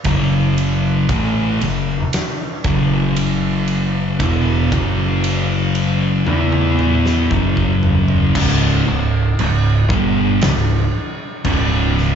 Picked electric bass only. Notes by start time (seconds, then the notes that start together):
0.05 F#1
1.09 A1
1.62 F#1
2.65 F#1
4.20 E1
4.73 F#1
6.28 E2
7.31 F#1
8.35 C#1
8.86 C#1
9.39 C#1
9.90 G1
10.42 C#1
11.45 C#1